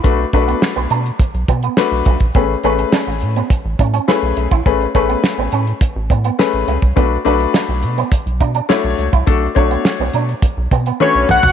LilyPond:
<<
  \new Staff \with { instrumentName = "Analog synth lead" } { \time 4/4 \key b \dorian \tempo 4 = 104 r1 | r1 | r1 | r1 |
r2. cis''8 fis''8 | }
  \new Staff \with { instrumentName = "Grand piano" } { \time 4/4 \key b \dorian <a d' fis' b'>8 <a d' fis' b'>4~ <a d' fis' b'>16 r4 r16 <a d' fis' b'>8 r8 | <a cis' gis' b'>8 <a cis' gis' b'>4~ <a cis' gis' b'>16 r4 r16 <a cis' gis' b'>8 r8 | <a cis' gis' b'>8 <a cis' gis' b'>4~ <a cis' gis' b'>16 r4 r16 <a cis' gis' b'>8 r8 | <a d' fis' b'>8 <a d' fis' b'>4~ <a d' fis' b'>16 r4 r16 <a d' fis' cis''>8 r8 |
<a d' fis' a'>8 <a d' fis' cis''>4~ <a d' fis' cis''>16 r4 r16 <a d' fis' b'>8 r8 | }
  \new Staff \with { instrumentName = "Clean electric guitar" } { \time 4/4 \key b \dorian r8 d'16 b16 r16 b16 d'16 r8. b16 b16 r8 a16 r16 | b16 r16 cis'16 r16 cis'16 r8 b16 r8 cis'16 cis'16 e'16 r8 e'16 | r8 cis'16 b16 r16 b16 cis'16 r8. b16 b16 r8 a16 r16 | b16 r16 d'16 r16 d'16 r8 b16 r8 d'16 d'16 e'16 r8 e'16 |
r8 d'16 b16 r16 b16 d'16 r8. b16 b16 r8 a16 r16 | }
  \new Staff \with { instrumentName = "Analog synth bass" } { \clef bass \time 4/4 \key b \dorian b,,8 b,,8 r16 b,,16 b,8 r16 b,,16 b,8 r16 b,,16 b,,16 ais,,16 | a,,8 a,,8 r16 a,,16 a,8 r16 a,,16 a,8 r16 b,,16 b,,16 ais,,16 | a,,8 a,,8 r16 a,,16 a,8 r16 a,,16 a,8 r16 a,,16 cis,16 c,16 | b,,8 b,,8 r16 b,,16 b,8 r16 b,,16 b,8 r16 b,,16 cis,16 c,16 |
b,,8 b,,8 r16 b,,16 b,8 r16 b,,16 b,8 r16 b,,16 b,,16 ais,,16 | }
  \new DrumStaff \with { instrumentName = "Drums" } \drummode { \time 4/4 <hh bd>8 <hh bd>16 hh16 sn16 hh16 hh16 hh16 <hh bd>16 hh16 <hh bd>16 hh16 sn16 hh16 <hh bd>16 <hh bd>16 | <hh bd>8 hh16 hh16 sn8 hh16 hh16 <hh bd>8 <hh bd>16 hh16 sn8 hh16 <hh bd>16 | <hh bd>16 hh16 <hh bd>16 hh16 sn16 hh16 hh16 hh16 <hh bd>8 <hh bd>16 hh16 sn16 hh16 hh16 <hh bd>16 | <hh bd>8 hh16 hh16 sn8 hh16 hh16 <hh bd>16 hh16 <hh bd>16 hh16 sn16 hh16 hh16 <hh bd>16 |
<hh bd>8 <hh bd>16 hh16 sn8 hh16 hh16 <hh bd>8 <hh bd>16 hh16 tommh8 toml16 tomfh16 | }
>>